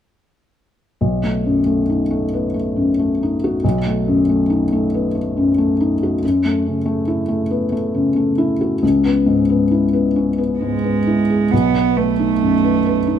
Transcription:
1.01 felt piano B1
1.23 felt piano A3
1.46 felt piano F#2
1.66 felt piano A3
1.89 felt piano D#4
2.11 felt piano A3
2.34 felt piano B3
2.54 felt piano A3
2.76 felt piano F#2
2.99 felt piano A3
3.23 felt piano D#4
3.44 felt piano F#4
3.64 felt piano B1
3.87 felt piano A3
4.08 felt piano F#2
4.29 felt piano A3
4.50 felt piano D#4
4.72 felt piano A3
4.94 felt piano B3
5.15 felt piano A3
5.37 felt piano F#2
5.58 felt piano A3
5.80 felt piano D#4
6.03 felt piano F#4
6.24 felt piano F#2
6.45 felt piano A3
6.66 felt piano C#3
6.86 felt piano A3
7.08 felt piano E4
7.28 felt piano A3
7.51 felt piano B3
7.72 felt piano A3
7.94 felt piano C#3
8.16 felt piano A3
8.38 felt piano E4
8.61 felt piano F#4
8.83 felt piano C#2
9.05 felt piano B3
9.26 felt piano G#2
9.50 felt piano B3
9.71 felt piano E4
9.93 felt piano B3
10.16 felt piano C#4
10.38 felt piano B3
10.60 felt piano G#2, cello G#3
10.84 felt piano B3
11.07 felt piano E4
11.30 felt piano G#4
11.51 felt piano B1, cello B3
11.75 felt piano B3
11.97 cello A3, felt piano B4
12.19 felt piano D#4
12.42 felt piano F#2
12.64 felt piano B3
12.86 felt piano B4
13.07 felt piano D#4

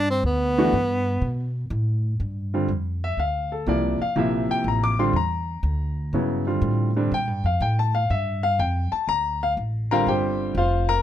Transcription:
Already playing: upright bass G2
0.10 tenor saxophone C4
0.23 upright bass D2, tenor saxophone B3
0.58 grand piano E3 A3 D4 F#4
0.73 upright bass G2
1.21 upright bass B2
1.70 upright bass A2
2.20 upright bass G2
2.54 grand piano D3 G3 C4 F4
2.68 upright bass F2
3.04 grand piano E5
3.17 upright bass D2, grand piano F5
3.52 grand piano A4
3.67 upright bass C2, grand piano C3 F3 A#3 E4 D5
4.01 grand piano F5, muted upright bass stroke
4.16 upright bass A#1, grand piano C3 F3 A#3 E4 E5
4.49 grand piano G5, muted upright bass stroke
4.64 upright bass A1
4.68 grand piano A#5
4.84 grand piano D6
4.99 grand piano D3 G3 C4 F4 C6
5.13 upright bass E2, grand piano A#5
5.63 upright bass D2
6.13 upright bass G2, grand piano C#3 F#3 B3 E4
6.47 grand piano D3 G3 C4 F4
6.62 upright bass A2
6.96 grand piano D3 G3 C4 D4
7.11 upright bass A#2, grand piano G5
7.27 upright bass G2
7.44 upright bass F2, grand piano F5
7.60 upright bass A2, grand piano G5
7.79 grand piano A5
7.95 grand piano F5
8.10 upright bass G2, grand piano E5
8.43 grand piano F5
8.59 upright bass F2, grand piano G5
8.92 grand piano A5, muted upright bass stroke
9.08 upright bass D2, grand piano A#5
9.43 grand piano F5
9.57 upright bass A1
9.91 grand piano D3 G3 C4 F4 A#4 F5 G5 A#5
10.06 upright bass G1, grand piano G4 C5 G5
10.55 upright bass F1, grand piano F4 C5 F5
10.89 grand piano A#4 A#5

